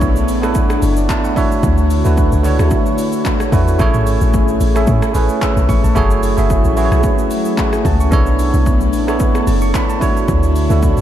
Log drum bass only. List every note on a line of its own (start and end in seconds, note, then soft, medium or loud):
0.00 0.30 B1 loud
0.28 0.80 A1 medium
0.82 1.08 F#1 medium
1.63 2.03 D2 loud
2.05 2.31 D2 loud
2.32 2.58 C#2 medium
2.59 2.71 D2 medium
3.52 3.78 E2 loud
3.79 4.19 A1 loud
4.21 4.59 A1 loud
4.60 4.86 A1 medium
4.87 5.02 A2 loud
5.15 5.29 A1 medium
5.57 5.68 B1 medium
5.69 5.83 A1 loud
5.84 5.95 A1 medium
5.96 6.36 F#1 loud
6.38 6.63 F#1 loud
6.65 6.90 A1 medium
6.92 7.03 B1 medium
7.85 8.11 C#2 loud
8.12 8.52 B1 loud
8.54 8.95 B1 loud
8.93 9.45 A1 medium
9.47 9.73 F#1 medium
10.28 10.68 D2 loud
10.70 10.96 D2 loud
10.97 11.01 C#2 medium